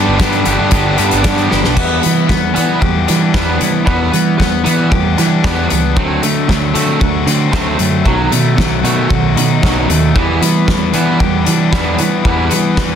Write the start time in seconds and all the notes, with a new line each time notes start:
Already playing: G2 D3 G3 B3 D4 G4
0.07 G1
0.19 G2 D3 G3 B3 D4 G4, kick, snare, closed hi-hat
0.33 closed hi-hat
0.44 G1 G2 D3 G3 B3 D4 G4, closed hi-hat
0.60 G2
0.71 G1 G2 D3 G3 B3 D4 G4, kick, closed hi-hat
0.97 G2 D3 G3 B3 D4 G4, closed hi-hat
1.11 G1, closed hi-hat
1.23 G2 D3 G3 B3 D4 G4, kick, snare, closed hi-hat
1.38 closed hi-hat
1.48 G1 G2 D3 G3 B3 D4 G4, snare
1.64 B1, snare
1.75 E2 E3 G3 B3, kick, crash
2.01 E3 G3 B3, closed hi-hat
2.06 E3
2.28 E2 E3 G3 B3, kick, snare
2.54 E3 G3 B3, closed hi-hat
2.80 E2 E3 G3 G4, kick
3.08 E3 G3 D4, snare, closed hi-hat
3.34 E2 E3 G3 B3, kick, snare
3.59 E3 G3 B3, closed hi-hat
3.85 E2 E3 G3 B3, kick
4.11 E3 G3 B3, closed hi-hat
4.37 E2 E3 G3 B3, kick
4.41 snare
4.64 E3 G3 B3, closed hi-hat
4.91 E2 E3 G3 G4, kick
5.17 E3 G3 D4, snare, closed hi-hat
5.44 E2 E3 G3 B3, kick, snare
5.69 C#2 E3 G3 B3, closed hi-hat
5.96 D2 D3 F#3 A3 C4, kick
6.23 D3 A3, closed hi-hat
6.47 D2 D3 F#3 A3, kick, snare
6.74 D3 A3 C4, closed hi-hat
7.00 D2 D3 A3 F#4, kick
7.26 D3 A3 C4, snare, closed hi-hat
7.52 D2 D3 F#3 A3 C4, kick, snare
7.78 F#2 D3 A3, closed hi-hat
8.05 B1 B2 D#3 F#3, kick
8.31 B2 D#3 A3, closed hi-hat
8.56 B1 B2 D#3 F#3, kick, snare
8.83 B2 D#3 F#3 A3, closed hi-hat
9.09 B1 B2 D#3 F#4, kick
9.36 B2 D#3 D#4, closed hi-hat
9.63 B1 B2 D#3 F#3, kick, snare
9.89 D#2 B2 D#3 A3, closed hi-hat
10.16 E2 E3 G3 B3, kick
10.41 E3 G3 B3, closed hi-hat
10.68 E2 E3 G3, kick, snare
10.93 E3 G3 B3, closed hi-hat
11.19 E2 E3 G3 G4, kick
11.45 E3 G3 D4, closed hi-hat
11.72 E2 E3 G3 B3, kick, snare
11.97 E3 G3 B3, closed hi-hat
12.25 E2 E3 G3 B3, kick
12.49 E3 G3 B3, closed hi-hat
12.77 E2 E3 G3, kick, snare